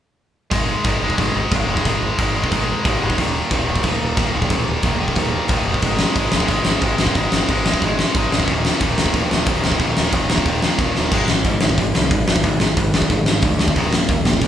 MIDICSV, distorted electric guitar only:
0, 0, Header, 1, 2, 480
1, 0, Start_track
1, 0, Tempo, 331126
1, 747, Time_signature, 4, 2, 24, 8
1, 20984, End_track
2, 0, Start_track
2, 0, Title_t, "Distorted electric guitar"
2, 0, Program_c, 0, 30
2, 741, Note_on_c, 0, 44, 96
2, 755, Note_on_c, 0, 51, 92
2, 763, Note_on_c, 0, 56, 99
2, 1219, Note_off_c, 0, 44, 0
2, 1221, Note_off_c, 0, 51, 0
2, 1224, Note_on_c, 0, 44, 80
2, 1238, Note_on_c, 0, 51, 80
2, 1241, Note_off_c, 0, 56, 0
2, 1246, Note_on_c, 0, 56, 87
2, 1479, Note_off_c, 0, 51, 0
2, 1484, Note_off_c, 0, 56, 0
2, 1490, Note_on_c, 0, 56, 85
2, 1497, Note_on_c, 0, 51, 70
2, 1505, Note_off_c, 0, 44, 0
2, 1511, Note_on_c, 0, 44, 69
2, 1712, Note_off_c, 0, 44, 0
2, 1719, Note_off_c, 0, 51, 0
2, 1730, Note_on_c, 0, 44, 92
2, 1734, Note_off_c, 0, 56, 0
2, 1736, Note_on_c, 0, 51, 84
2, 1752, Note_on_c, 0, 56, 93
2, 2194, Note_off_c, 0, 44, 0
2, 2209, Note_off_c, 0, 51, 0
2, 2212, Note_on_c, 0, 44, 74
2, 2215, Note_off_c, 0, 56, 0
2, 2226, Note_on_c, 0, 51, 74
2, 2233, Note_on_c, 0, 56, 88
2, 2419, Note_off_c, 0, 56, 0
2, 2434, Note_off_c, 0, 51, 0
2, 2436, Note_on_c, 0, 56, 75
2, 2441, Note_off_c, 0, 44, 0
2, 2452, Note_on_c, 0, 51, 84
2, 2458, Note_on_c, 0, 44, 71
2, 2666, Note_off_c, 0, 44, 0
2, 2679, Note_off_c, 0, 51, 0
2, 2684, Note_on_c, 0, 44, 94
2, 2688, Note_off_c, 0, 56, 0
2, 2696, Note_on_c, 0, 51, 99
2, 2706, Note_on_c, 0, 56, 94
2, 3147, Note_off_c, 0, 44, 0
2, 3161, Note_off_c, 0, 51, 0
2, 3164, Note_on_c, 0, 44, 78
2, 3174, Note_off_c, 0, 56, 0
2, 3178, Note_on_c, 0, 51, 82
2, 3191, Note_on_c, 0, 56, 84
2, 3395, Note_off_c, 0, 56, 0
2, 3407, Note_off_c, 0, 51, 0
2, 3413, Note_on_c, 0, 56, 86
2, 3420, Note_off_c, 0, 44, 0
2, 3424, Note_on_c, 0, 51, 82
2, 3438, Note_on_c, 0, 44, 76
2, 3631, Note_off_c, 0, 44, 0
2, 3638, Note_off_c, 0, 51, 0
2, 3645, Note_off_c, 0, 56, 0
2, 3648, Note_on_c, 0, 44, 83
2, 3655, Note_on_c, 0, 51, 100
2, 3663, Note_on_c, 0, 56, 102
2, 4108, Note_off_c, 0, 44, 0
2, 4112, Note_off_c, 0, 51, 0
2, 4126, Note_on_c, 0, 44, 85
2, 4129, Note_on_c, 0, 51, 91
2, 4132, Note_off_c, 0, 56, 0
2, 4150, Note_on_c, 0, 56, 87
2, 4343, Note_off_c, 0, 56, 0
2, 4358, Note_off_c, 0, 51, 0
2, 4361, Note_on_c, 0, 56, 79
2, 4367, Note_off_c, 0, 44, 0
2, 4375, Note_on_c, 0, 51, 77
2, 4384, Note_on_c, 0, 44, 68
2, 4589, Note_off_c, 0, 56, 0
2, 4597, Note_off_c, 0, 51, 0
2, 4600, Note_on_c, 0, 39, 86
2, 4601, Note_off_c, 0, 44, 0
2, 4611, Note_on_c, 0, 46, 92
2, 4620, Note_on_c, 0, 51, 97
2, 5080, Note_off_c, 0, 39, 0
2, 5081, Note_off_c, 0, 46, 0
2, 5086, Note_on_c, 0, 39, 84
2, 5098, Note_on_c, 0, 46, 98
2, 5101, Note_off_c, 0, 51, 0
2, 5107, Note_on_c, 0, 51, 90
2, 5304, Note_off_c, 0, 51, 0
2, 5306, Note_off_c, 0, 46, 0
2, 5309, Note_on_c, 0, 51, 90
2, 5323, Note_off_c, 0, 39, 0
2, 5324, Note_on_c, 0, 46, 66
2, 5329, Note_on_c, 0, 39, 63
2, 5552, Note_off_c, 0, 39, 0
2, 5569, Note_off_c, 0, 46, 0
2, 5569, Note_on_c, 0, 39, 101
2, 5574, Note_off_c, 0, 51, 0
2, 5587, Note_on_c, 0, 46, 91
2, 5592, Note_on_c, 0, 51, 106
2, 6025, Note_off_c, 0, 39, 0
2, 6035, Note_off_c, 0, 46, 0
2, 6043, Note_on_c, 0, 39, 80
2, 6047, Note_off_c, 0, 51, 0
2, 6052, Note_on_c, 0, 46, 80
2, 6065, Note_on_c, 0, 51, 89
2, 6267, Note_off_c, 0, 51, 0
2, 6285, Note_on_c, 0, 51, 72
2, 6290, Note_off_c, 0, 46, 0
2, 6296, Note_off_c, 0, 39, 0
2, 6307, Note_on_c, 0, 46, 77
2, 6313, Note_on_c, 0, 39, 68
2, 6531, Note_off_c, 0, 39, 0
2, 6539, Note_off_c, 0, 46, 0
2, 6549, Note_off_c, 0, 51, 0
2, 6549, Note_on_c, 0, 39, 93
2, 6557, Note_on_c, 0, 46, 91
2, 6566, Note_on_c, 0, 51, 96
2, 7002, Note_off_c, 0, 39, 0
2, 7020, Note_off_c, 0, 46, 0
2, 7020, Note_on_c, 0, 39, 83
2, 7025, Note_off_c, 0, 51, 0
2, 7038, Note_on_c, 0, 46, 78
2, 7043, Note_on_c, 0, 51, 96
2, 7234, Note_off_c, 0, 51, 0
2, 7247, Note_off_c, 0, 46, 0
2, 7251, Note_on_c, 0, 51, 87
2, 7255, Note_off_c, 0, 39, 0
2, 7264, Note_on_c, 0, 46, 66
2, 7272, Note_on_c, 0, 39, 78
2, 7480, Note_off_c, 0, 39, 0
2, 7497, Note_off_c, 0, 51, 0
2, 7497, Note_on_c, 0, 39, 79
2, 7498, Note_off_c, 0, 46, 0
2, 7514, Note_on_c, 0, 51, 96
2, 7515, Note_on_c, 0, 46, 100
2, 7970, Note_off_c, 0, 39, 0
2, 7981, Note_off_c, 0, 46, 0
2, 7988, Note_on_c, 0, 39, 78
2, 7995, Note_off_c, 0, 51, 0
2, 7999, Note_on_c, 0, 46, 78
2, 8012, Note_on_c, 0, 51, 87
2, 8204, Note_off_c, 0, 51, 0
2, 8216, Note_off_c, 0, 46, 0
2, 8221, Note_on_c, 0, 51, 78
2, 8229, Note_off_c, 0, 39, 0
2, 8234, Note_on_c, 0, 46, 65
2, 8247, Note_on_c, 0, 39, 70
2, 8442, Note_off_c, 0, 51, 0
2, 8448, Note_off_c, 0, 46, 0
2, 8454, Note_on_c, 0, 44, 84
2, 8455, Note_off_c, 0, 39, 0
2, 8466, Note_on_c, 0, 51, 98
2, 8477, Note_on_c, 0, 56, 85
2, 8944, Note_off_c, 0, 44, 0
2, 8944, Note_off_c, 0, 51, 0
2, 8950, Note_on_c, 0, 44, 85
2, 8961, Note_on_c, 0, 51, 86
2, 8964, Note_off_c, 0, 56, 0
2, 8970, Note_on_c, 0, 56, 86
2, 9193, Note_off_c, 0, 56, 0
2, 9197, Note_off_c, 0, 51, 0
2, 9199, Note_on_c, 0, 56, 72
2, 9213, Note_off_c, 0, 44, 0
2, 9215, Note_on_c, 0, 51, 74
2, 9219, Note_on_c, 0, 44, 68
2, 9409, Note_off_c, 0, 44, 0
2, 9421, Note_off_c, 0, 51, 0
2, 9427, Note_on_c, 0, 44, 97
2, 9435, Note_off_c, 0, 56, 0
2, 9438, Note_on_c, 0, 51, 85
2, 9453, Note_on_c, 0, 56, 106
2, 9893, Note_off_c, 0, 44, 0
2, 9905, Note_off_c, 0, 51, 0
2, 9909, Note_off_c, 0, 56, 0
2, 9910, Note_on_c, 0, 44, 75
2, 9922, Note_on_c, 0, 51, 73
2, 9927, Note_on_c, 0, 56, 79
2, 10134, Note_off_c, 0, 56, 0
2, 10144, Note_off_c, 0, 51, 0
2, 10151, Note_on_c, 0, 56, 80
2, 10159, Note_off_c, 0, 44, 0
2, 10161, Note_on_c, 0, 51, 76
2, 10176, Note_on_c, 0, 44, 66
2, 10369, Note_off_c, 0, 44, 0
2, 10386, Note_off_c, 0, 51, 0
2, 10387, Note_on_c, 0, 44, 83
2, 10395, Note_off_c, 0, 56, 0
2, 10404, Note_on_c, 0, 51, 94
2, 10413, Note_on_c, 0, 56, 94
2, 10851, Note_off_c, 0, 44, 0
2, 10863, Note_off_c, 0, 51, 0
2, 10868, Note_on_c, 0, 44, 82
2, 10876, Note_off_c, 0, 56, 0
2, 10880, Note_on_c, 0, 51, 84
2, 10894, Note_on_c, 0, 56, 86
2, 11101, Note_off_c, 0, 56, 0
2, 11115, Note_off_c, 0, 51, 0
2, 11119, Note_on_c, 0, 56, 84
2, 11122, Note_off_c, 0, 44, 0
2, 11133, Note_on_c, 0, 51, 76
2, 11144, Note_on_c, 0, 44, 65
2, 11337, Note_off_c, 0, 44, 0
2, 11341, Note_off_c, 0, 51, 0
2, 11354, Note_on_c, 0, 44, 81
2, 11355, Note_off_c, 0, 56, 0
2, 11359, Note_on_c, 0, 51, 88
2, 11372, Note_on_c, 0, 56, 106
2, 11821, Note_off_c, 0, 44, 0
2, 11822, Note_off_c, 0, 51, 0
2, 11838, Note_on_c, 0, 44, 73
2, 11839, Note_off_c, 0, 56, 0
2, 11840, Note_on_c, 0, 51, 82
2, 11857, Note_on_c, 0, 56, 86
2, 12049, Note_off_c, 0, 56, 0
2, 12055, Note_off_c, 0, 51, 0
2, 12064, Note_off_c, 0, 44, 0
2, 12067, Note_on_c, 0, 56, 90
2, 12072, Note_on_c, 0, 51, 81
2, 12082, Note_on_c, 0, 44, 71
2, 12281, Note_off_c, 0, 56, 0
2, 12284, Note_off_c, 0, 51, 0
2, 12289, Note_off_c, 0, 44, 0
2, 12304, Note_on_c, 0, 39, 96
2, 12313, Note_on_c, 0, 46, 90
2, 12330, Note_on_c, 0, 51, 96
2, 12777, Note_off_c, 0, 46, 0
2, 12778, Note_off_c, 0, 39, 0
2, 12784, Note_on_c, 0, 39, 71
2, 12792, Note_off_c, 0, 51, 0
2, 12795, Note_on_c, 0, 46, 91
2, 12797, Note_on_c, 0, 51, 82
2, 12999, Note_off_c, 0, 51, 0
2, 13005, Note_on_c, 0, 51, 78
2, 13012, Note_off_c, 0, 46, 0
2, 13019, Note_off_c, 0, 39, 0
2, 13025, Note_on_c, 0, 39, 69
2, 13029, Note_on_c, 0, 46, 78
2, 13263, Note_off_c, 0, 39, 0
2, 13268, Note_off_c, 0, 51, 0
2, 13274, Note_off_c, 0, 46, 0
2, 13280, Note_on_c, 0, 39, 97
2, 13291, Note_on_c, 0, 51, 100
2, 13292, Note_on_c, 0, 46, 92
2, 13713, Note_off_c, 0, 39, 0
2, 13728, Note_off_c, 0, 46, 0
2, 13730, Note_on_c, 0, 39, 74
2, 13744, Note_off_c, 0, 51, 0
2, 13745, Note_on_c, 0, 46, 89
2, 13761, Note_on_c, 0, 51, 92
2, 13948, Note_off_c, 0, 51, 0
2, 13959, Note_off_c, 0, 46, 0
2, 13966, Note_on_c, 0, 51, 85
2, 13969, Note_off_c, 0, 39, 0
2, 13977, Note_on_c, 0, 46, 77
2, 13987, Note_on_c, 0, 39, 69
2, 14169, Note_off_c, 0, 39, 0
2, 14179, Note_off_c, 0, 46, 0
2, 14187, Note_on_c, 0, 39, 91
2, 14192, Note_off_c, 0, 51, 0
2, 14197, Note_on_c, 0, 46, 92
2, 14209, Note_on_c, 0, 51, 103
2, 14672, Note_off_c, 0, 39, 0
2, 14680, Note_off_c, 0, 46, 0
2, 14689, Note_on_c, 0, 39, 84
2, 14690, Note_off_c, 0, 51, 0
2, 14697, Note_on_c, 0, 46, 84
2, 14708, Note_on_c, 0, 51, 81
2, 14914, Note_off_c, 0, 51, 0
2, 14920, Note_off_c, 0, 46, 0
2, 14931, Note_off_c, 0, 39, 0
2, 14932, Note_on_c, 0, 51, 81
2, 14937, Note_on_c, 0, 46, 75
2, 14949, Note_on_c, 0, 39, 68
2, 15143, Note_off_c, 0, 39, 0
2, 15159, Note_off_c, 0, 46, 0
2, 15160, Note_on_c, 0, 39, 80
2, 15164, Note_off_c, 0, 51, 0
2, 15177, Note_on_c, 0, 46, 91
2, 15182, Note_on_c, 0, 51, 94
2, 15609, Note_off_c, 0, 39, 0
2, 15624, Note_off_c, 0, 46, 0
2, 15626, Note_on_c, 0, 39, 77
2, 15641, Note_off_c, 0, 51, 0
2, 15642, Note_on_c, 0, 46, 83
2, 15658, Note_on_c, 0, 51, 75
2, 15861, Note_off_c, 0, 51, 0
2, 15875, Note_off_c, 0, 46, 0
2, 15878, Note_off_c, 0, 39, 0
2, 15879, Note_on_c, 0, 51, 82
2, 15893, Note_on_c, 0, 46, 76
2, 15896, Note_on_c, 0, 39, 62
2, 16103, Note_off_c, 0, 51, 0
2, 16110, Note_off_c, 0, 46, 0
2, 16112, Note_off_c, 0, 39, 0
2, 16121, Note_on_c, 0, 44, 81
2, 16137, Note_on_c, 0, 51, 95
2, 16139, Note_on_c, 0, 56, 100
2, 16344, Note_off_c, 0, 44, 0
2, 16352, Note_off_c, 0, 51, 0
2, 16353, Note_off_c, 0, 56, 0
2, 16368, Note_on_c, 0, 51, 76
2, 16369, Note_on_c, 0, 44, 70
2, 16577, Note_off_c, 0, 51, 0
2, 16578, Note_off_c, 0, 44, 0
2, 16601, Note_on_c, 0, 51, 93
2, 16603, Note_on_c, 0, 44, 82
2, 16814, Note_off_c, 0, 51, 0
2, 16815, Note_off_c, 0, 44, 0
2, 16840, Note_on_c, 0, 44, 68
2, 16853, Note_on_c, 0, 51, 75
2, 17053, Note_off_c, 0, 44, 0
2, 17060, Note_off_c, 0, 51, 0
2, 17088, Note_on_c, 0, 44, 71
2, 17094, Note_on_c, 0, 51, 82
2, 17297, Note_off_c, 0, 44, 0
2, 17300, Note_off_c, 0, 51, 0
2, 17316, Note_on_c, 0, 44, 74
2, 17323, Note_on_c, 0, 51, 75
2, 17531, Note_off_c, 0, 44, 0
2, 17534, Note_off_c, 0, 51, 0
2, 17559, Note_on_c, 0, 51, 78
2, 17562, Note_on_c, 0, 44, 72
2, 17772, Note_off_c, 0, 51, 0
2, 17773, Note_off_c, 0, 44, 0
2, 17801, Note_on_c, 0, 44, 70
2, 17807, Note_on_c, 0, 51, 71
2, 18013, Note_off_c, 0, 44, 0
2, 18016, Note_off_c, 0, 51, 0
2, 18039, Note_on_c, 0, 44, 67
2, 18045, Note_on_c, 0, 51, 76
2, 18251, Note_off_c, 0, 44, 0
2, 18254, Note_off_c, 0, 51, 0
2, 18284, Note_on_c, 0, 44, 69
2, 18293, Note_on_c, 0, 51, 78
2, 18493, Note_off_c, 0, 44, 0
2, 18498, Note_off_c, 0, 51, 0
2, 18520, Note_on_c, 0, 44, 65
2, 18531, Note_on_c, 0, 51, 78
2, 18731, Note_off_c, 0, 44, 0
2, 18737, Note_off_c, 0, 51, 0
2, 18765, Note_on_c, 0, 44, 64
2, 18775, Note_on_c, 0, 51, 84
2, 18974, Note_off_c, 0, 44, 0
2, 18979, Note_off_c, 0, 51, 0
2, 19000, Note_on_c, 0, 44, 80
2, 19013, Note_on_c, 0, 51, 82
2, 19211, Note_off_c, 0, 44, 0
2, 19217, Note_off_c, 0, 51, 0
2, 19255, Note_on_c, 0, 44, 75
2, 19269, Note_on_c, 0, 51, 79
2, 19458, Note_off_c, 0, 44, 0
2, 19465, Note_off_c, 0, 51, 0
2, 19492, Note_on_c, 0, 44, 61
2, 19493, Note_on_c, 0, 51, 83
2, 19697, Note_off_c, 0, 44, 0
2, 19697, Note_off_c, 0, 51, 0
2, 19723, Note_on_c, 0, 44, 64
2, 19724, Note_on_c, 0, 51, 81
2, 19932, Note_off_c, 0, 44, 0
2, 19932, Note_off_c, 0, 51, 0
2, 19968, Note_on_c, 0, 39, 82
2, 19979, Note_on_c, 0, 46, 96
2, 19990, Note_on_c, 0, 51, 97
2, 20184, Note_off_c, 0, 39, 0
2, 20189, Note_off_c, 0, 46, 0
2, 20195, Note_off_c, 0, 51, 0
2, 20201, Note_on_c, 0, 39, 76
2, 20204, Note_on_c, 0, 46, 81
2, 20410, Note_off_c, 0, 39, 0
2, 20412, Note_off_c, 0, 46, 0
2, 20434, Note_on_c, 0, 39, 82
2, 20447, Note_on_c, 0, 46, 96
2, 20647, Note_off_c, 0, 39, 0
2, 20654, Note_off_c, 0, 46, 0
2, 20673, Note_on_c, 0, 46, 80
2, 20674, Note_on_c, 0, 39, 61
2, 20886, Note_off_c, 0, 46, 0
2, 20887, Note_off_c, 0, 39, 0
2, 20915, Note_on_c, 0, 39, 78
2, 20922, Note_on_c, 0, 46, 83
2, 20984, Note_off_c, 0, 39, 0
2, 20984, Note_off_c, 0, 46, 0
2, 20984, End_track
0, 0, End_of_file